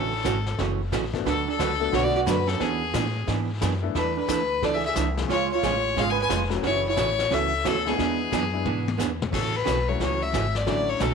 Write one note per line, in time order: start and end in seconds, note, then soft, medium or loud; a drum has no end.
0.00 0.24 A1 medium
0.00 0.12 C#3 medium
0.00 0.12 E3 medium
0.00 0.13 A3 medium
0.00 0.13 C#4 medium
0.00 0.60 C#4 medium
0.00 0.13 F#4 medium
0.00 0.59 A4 medium
0.24 0.57 G#1 medium
0.24 0.36 C#3 medium
0.24 0.36 E3 medium
0.24 0.36 A3 medium
0.24 0.37 C#4 medium
0.24 0.37 F#4 loud
0.24 kick soft
0.24 snare medium
0.24 hi-hat pedal medium
0.46 snare soft
0.58 0.91 F#1 medium
0.58 0.80 C#3 medium
0.58 0.80 E3 medium
0.58 0.80 A3 medium
0.58 0.81 C#4 medium
0.58 0.81 F#4 medium
0.58 brush sweep medium
0.58 kick soft
0.58 snare soft
0.92 1.25 A1 loud
0.92 1.03 C#3 medium
0.92 1.04 E3 medium
0.92 1.04 A3 medium
0.92 1.04 C#4 medium
0.92 1.04 F#4 medium
0.92 kick soft
0.92 snare medium
0.92 hi-hat pedal medium
1.13 1.24 A3 medium
1.13 1.25 B3 medium
1.13 1.25 D4 medium
1.13 1.25 F#4 medium
1.13 1.25 A4 medium
1.13 kick soft
1.13 snare soft
1.25 1.58 D2 medium
1.25 1.47 D3 medium
1.25 1.47 F#3 medium
1.25 1.47 A3 medium
1.25 1.47 D4 medium
1.25 1.46 D4 medium
1.25 1.47 F#4 medium
1.25 1.47 A4 medium
1.25 1.48 B4 medium
1.25 brush sweep soft
1.25 kick soft
1.25 snare soft
1.48 1.91 D4 medium
1.48 1.96 A4 loud
1.59 1.92 C#2 medium
1.59 1.70 D3 medium
1.59 1.71 F#3 medium
1.59 1.71 A3 medium
1.59 1.71 D4 medium
1.59 1.71 F#4 medium
1.59 1.71 B4 medium
1.59 kick soft
1.59 snare medium
1.59 hi-hat pedal medium
1.80 2.24 A3 medium
1.80 2.24 B3 medium
1.80 2.24 D4 medium
1.80 2.24 F#4 medium
1.80 2.24 A4 medium
1.92 2.26 B1 medium
1.92 2.14 D3 medium
1.92 2.14 F#3 medium
1.92 2.14 A3 medium
1.92 2.15 D4 medium
1.92 2.04 F#4 medium
1.92 2.15 F#4 medium
1.92 2.15 B4 medium
1.92 2.05 C#5 loud
1.92 brush sweep medium
1.92 kick soft
1.92 snare medium
2.04 2.15 F#4 medium
2.04 2.15 D5 loud
2.15 2.21 F#4 medium
2.15 2.20 D5 loud
2.26 2.59 F#2 loud
2.26 2.38 D3 medium
2.26 2.38 F#3 medium
2.26 2.38 A3 medium
2.26 2.38 D4 medium
2.26 2.47 D4 medium
2.26 2.38 F#4 medium
2.26 2.49 B4 loud
2.26 2.38 B4 medium
2.26 kick soft
2.26 snare medium
2.26 hi-hat pedal medium
2.47 2.60 C#4 medium
2.47 2.62 A4 medium
2.47 snare soft
2.59 2.81 E3 medium
2.59 2.82 B3 medium
2.59 3.28 B3 medium
2.59 2.82 D4 medium
2.59 3.28 G#4 medium
2.59 2.82 G#4 medium
2.59 brush sweep medium
2.59 kick soft
2.59 snare soft
2.93 3.26 A2 loud
2.93 3.05 E3 medium
2.93 3.05 B3 medium
2.93 3.06 D4 medium
2.93 3.06 G#4 medium
2.93 kick soft
2.93 snare medium
2.93 hi-hat pedal medium
3.27 3.60 G#2 medium
3.27 3.49 E3 medium
3.27 3.49 B3 medium
3.27 3.49 D4 medium
3.27 3.50 G#4 medium
3.27 brush sweep medium
3.27 kick soft
3.27 snare soft
3.61 3.94 F#2 loud
3.61 3.73 E3 medium
3.61 3.73 B3 medium
3.61 3.73 D4 medium
3.61 3.73 G#4 medium
3.61 kick soft
3.61 snare medium
3.61 hi-hat pedal medium
3.82 3.94 A3 medium
3.82 3.94 B3 medium
3.82 3.94 D4 medium
3.82 3.94 E4 medium
3.82 3.94 A4 medium
3.94 4.27 E2 medium
3.94 4.16 E3 medium
3.94 4.17 A3 medium
3.94 4.17 D4 medium
3.94 4.16 D4 medium
3.94 4.17 E4 medium
3.94 4.17 A4 medium
3.94 4.15 B4 medium
3.94 brush sweep soft
3.94 kick soft
3.94 snare soft
4.17 4.60 D4 medium
4.17 4.66 B4 medium
4.28 4.61 D2 loud
4.28 4.40 E3 medium
4.28 4.40 A3 medium
4.28 4.40 D4 medium
4.28 4.41 E4 medium
4.28 4.41 A4 medium
4.28 kick soft
4.28 snare medium
4.28 hi-hat pedal medium
4.62 4.95 C#2 medium
4.62 4.84 E3 medium
4.62 4.84 A3 medium
4.62 4.84 D4 medium
4.62 4.84 E4 medium
4.62 4.84 A4 medium
4.62 4.74 A4 medium
4.62 4.76 D5 medium
4.62 brush sweep soft
4.62 kick soft
4.62 snare soft
4.74 4.86 G#4 medium
4.74 4.85 E5 loud
4.85 5.04 G#4 medium
4.85 5.02 E5 medium
4.96 5.29 C2 loud
4.96 5.07 E3 medium
4.96 5.07 A3 medium
4.96 5.08 D4 medium
4.96 5.08 E4 medium
4.96 5.08 A4 medium
4.96 kick soft
4.96 snare medium
4.96 hi-hat pedal medium
5.17 5.28 F3 medium
5.17 5.28 G#3 medium
5.17 5.29 C#4 medium
5.17 5.29 F4 medium
5.17 5.29 G#4 medium
5.17 snare soft
5.28 5.50 C#3 medium
5.28 5.51 G#3 medium
5.28 5.51 C#4 medium
5.28 5.51 F4 medium
5.28 5.51 G#4 medium
5.28 5.50 C#5 loud
5.28 brush sweep medium
5.28 kick soft
5.28 snare soft
5.32 5.51 F4 medium
5.52 5.96 F4 medium
5.52 6.01 C#5 loud
5.63 5.96 A1 medium
5.63 5.74 C#3 medium
5.63 5.75 G#3 medium
5.63 5.75 C#4 medium
5.63 5.75 F4 medium
5.63 5.75 G#4 medium
5.63 kick soft
5.63 snare medium
5.63 hi-hat pedal medium
5.96 6.29 G#1 medium
5.96 6.18 C#3 medium
5.96 6.18 G#3 medium
5.96 6.18 C#4 medium
5.96 6.18 F4 medium
5.96 6.18 G#4 medium
5.96 6.12 F5 loud
5.96 brush sweep medium
5.96 kick soft
5.96 snare soft
6.01 6.10 G#4 medium
6.10 6.21 B4 medium
6.10 6.20 G#5 loud
6.22 6.38 B4 medium
6.22 6.37 G#5 medium
6.29 6.63 F1 loud
6.29 6.41 C#3 medium
6.29 6.41 G#3 medium
6.29 6.42 C#4 medium
6.29 6.42 F4 medium
6.29 6.42 G#4 medium
6.29 kick soft
6.29 snare medium
6.29 hi-hat pedal medium
6.50 6.62 F#3 medium
6.50 6.62 A3 medium
6.50 6.62 C#4 medium
6.50 6.62 E4 medium
6.50 6.62 F#4 medium
6.50 snare soft
6.63 6.96 F#1 medium
6.63 6.85 C#3 medium
6.63 6.85 E3 medium
6.63 6.85 A3 medium
6.63 6.85 C#4 medium
6.63 6.85 F#4 medium
6.63 6.85 C#5 loud
6.63 brush sweep soft
6.63 kick soft
6.63 snare soft
6.68 6.86 E4 medium
6.88 7.30 E4 medium
6.88 7.35 C#5 loud
6.96 7.30 A1 loud
6.96 7.08 C#3 medium
6.96 7.08 E3 medium
6.96 7.09 A3 medium
6.96 7.09 C#4 medium
6.96 7.09 F#4 loud
6.96 kick soft
6.96 snare medium
6.96 hi-hat pedal medium
7.19 snare soft
7.30 7.63 C#2 medium
7.30 7.52 C#3 medium
7.30 7.52 E3 medium
7.30 7.52 A3 medium
7.30 7.53 C#4 medium
7.30 7.53 F#4 medium
7.30 7.66 A4 medium
7.30 7.68 E5 loud
7.30 brush sweep soft
7.30 kick soft
7.30 snare soft
7.64 7.97 D2 loud
7.64 7.76 C#3 medium
7.64 7.76 E3 medium
7.64 7.76 A3 medium
7.64 7.76 C#4 medium
7.64 7.77 F#4 medium
7.64 7.90 A4 loud
7.64 kick soft
7.64 snare medium
7.64 hi-hat pedal medium
7.69 7.88 C#4 medium
7.84 7.95 G#3 medium
7.84 7.95 B3 medium
7.84 7.95 D4 medium
7.84 7.96 E4 medium
7.84 7.97 G#4 medium
7.84 9.00 G#4 medium
7.84 snare soft
7.89 9.01 B3 medium
7.97 8.31 E2 medium
7.97 8.20 E3 medium
7.97 8.48 G#3 medium
7.97 8.48 B3 medium
7.97 8.20 B3 medium
7.97 8.48 D4 medium
7.97 8.20 D4 medium
7.97 8.48 E4 medium
7.97 8.49 G#4 medium
7.97 8.20 G#4 medium
7.97 brush sweep soft
7.97 kick soft
7.97 snare soft
8.32 8.65 F#2 medium
8.32 8.43 E3 medium
8.32 8.43 B3 medium
8.32 8.44 D4 loud
8.32 8.44 G#4 medium
8.32 kick soft
8.32 snare medium
8.32 hi-hat pedal medium
8.53 8.64 G#3 medium
8.53 8.64 B3 medium
8.53 8.64 D4 medium
8.53 8.65 E4 medium
8.53 8.65 G#4 medium
8.65 8.97 G#2 medium
8.65 8.87 E3 medium
8.65 8.87 B3 medium
8.65 8.87 D4 medium
8.65 8.87 G#4 medium
8.65 mid tom soft
8.88 high tom medium
8.98 9.31 E2 loud
8.98 9.10 E3 medium
8.98 9.10 B3 medium
8.98 9.10 D4 medium
8.98 9.10 G#4 medium
8.98 snare medium
8.98 hi-hat pedal medium
9.22 mid tom medium
9.32 9.66 A1 medium
9.32 9.54 C#3 medium
9.32 9.54 E3 medium
9.32 9.54 A3 medium
9.32 9.54 C#4 medium
9.32 9.54 F#4 medium
9.32 9.57 A4 medium
9.32 brush sweep soft
9.32 kick medium
9.32 snare soft
9.32 crash medium
9.56 9.90 B4 medium
9.65 9.99 B1 loud
9.65 9.77 C#3 medium
9.65 9.77 E3 medium
9.65 9.77 A3 medium
9.65 9.77 C#4 medium
9.65 9.78 F#4 medium
9.65 kick soft
9.65 snare medium
9.65 hi-hat pedal medium
9.88 10.31 F#3 medium
9.88 10.32 A3 medium
9.88 10.32 C#4 medium
9.88 10.32 E4 medium
9.88 10.32 F#4 medium
9.88 10.01 C#5 medium
10.00 10.32 C#2 medium
10.00 10.21 C#3 medium
10.00 10.21 E3 medium
10.00 10.21 A3 medium
10.00 10.22 C#4 medium
10.00 10.22 F#4 medium
10.00 10.24 C#5 medium
10.00 brush sweep soft
10.00 kick soft
10.00 snare soft
10.23 10.58 E5 medium
10.33 10.66 G#1 loud
10.33 10.45 C#3 medium
10.33 10.45 E3 medium
10.33 10.45 A3 medium
10.33 10.45 C#4 medium
10.33 10.45 F#4 medium
10.33 kick soft
10.33 snare medium
10.33 hi-hat pedal medium
10.55 10.68 D5 medium
10.55 snare soft
10.66 11.00 A1 medium
10.66 10.88 D3 medium
10.66 10.88 F#3 medium
10.66 11.14 F#3 medium
10.66 10.88 A3 medium
10.66 11.14 A3 medium
10.66 10.88 C#4 medium
10.66 11.14 C#4 medium
10.66 11.14 D4 medium
10.66 11.14 E4 medium
10.66 10.89 F#4 medium
10.66 10.91 D5 medium
10.66 brush sweep soft
10.66 kick soft
10.66 snare soft
10.89 11.03 C#5 medium
11.00 11.14 B1 medium
11.00 11.12 D3 medium
11.00 11.12 F#3 medium
11.00 11.12 A3 medium
11.00 11.12 C#4 medium
11.00 11.12 F#4 medium
11.00 11.14 A4 medium
11.00 kick soft
11.00 snare medium
11.00 hi-hat pedal medium